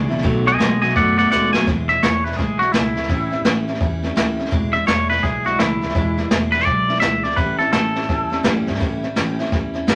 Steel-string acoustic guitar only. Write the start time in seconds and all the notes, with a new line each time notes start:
Already playing: E2 B2 E3
0.09 E3 G#3 D4 E4
0.23 B2 D#3 A3 B3 F#4
0.45 A3 B3 F#4
0.58 B2 D#3 A3 B3 F#4
0.81 A3 B3 F#4
0.95 D#3 A3 B3 F#4
1.17 A3 B3 F#4
1.30 B2 D#3 A3 B3 F#4
1.53 A3 B3 F#4
1.66 E2 B2 E3 G#3 D4 E4
1.88 E3 G#3 D4 E4
2.02 E2 B2 E3 G#3 D4 E4
2.25 E3 G#3 D4 E4
2.37 E3 G#3 D4 E4
2.60 E3 G#3 D4 E4
2.73 E2 B2 E3 G#3 D4 E4
2.95 E3 G#3 D4 E4
3.08 A2 E3 G3 C#4 E4
3.31 G3 C#4 E4
3.44 A2 E3 G3 C#4 E4
3.68 G3 C#4 E4
3.80 E3 G3 C#4 E4
4.02 G3 C#4 E4
4.16 A2 E3 G3 C#4 E4
4.37 G3 C#4 E4
4.51 E2 B2 E3 G#3 D4 E4
4.72 E3 G#3 D4 E4
4.86 E2 B2 E3 G#3 D4 E4
5.08 E3 G#3 D4 E4
5.21 E3 G#3 D4 E4
5.44 E3 G#3 D4 E4
5.59 E2 B2 E3 G#3 D4 E4
5.81 E3 G#3 D4 E4
5.95 E2 B2 E3 G#3 D4 E4
6.17 E3 G#3 D4 E4
6.30 E2 B2 E3 G#3 D4 E4
6.53 E3 G#3 D4 E4
6.65 E3 G#3 D4 E4
6.88 E3 G#3 D4 E4
7.01 E2 B2 E3 G#3 D4 E4
7.23 E3 G#3 D4 E4
7.36 A2 E3 G3 C#4 E4
7.59 G3 C#4 E4
7.72 A2 E3 G3 C#4 E4
7.94 G3 C#4 E4
8.07 E3 G3 C#4 E4
8.30 G3 C#4 E4
8.43 A2 E3 G3 C#4 E4
8.67 G3 C#4 E4
8.79 A2 E3 G3 C#4 E4
9.02 G3 C#4 E4
9.16 A2 E3 G3 C#4 E4
9.39 G3 C#4 E4
9.51 E3 G3 C#4 E4
9.74 G3 C#4 E4
9.87 A2 E3 G3 C#4 E4